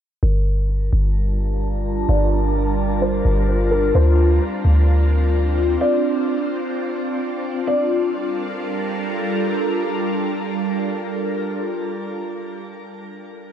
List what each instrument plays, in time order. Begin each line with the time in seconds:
0.23 808-style bass G1, ambient pad G3 D4 F4 A#4 A5, felt piano A#4
0.93 808-style bass G1
2.09 808-style bass G1, felt piano D5
3.02 felt piano C5
3.25 808-style bass G1
3.71 felt piano A#4
3.95 808-style bass D2, ambient pad C4, felt piano C5
4.65 808-style bass D2
5.81 felt piano D5
7.67 ambient pad G3 D4 F4 A4 A#4, felt piano D5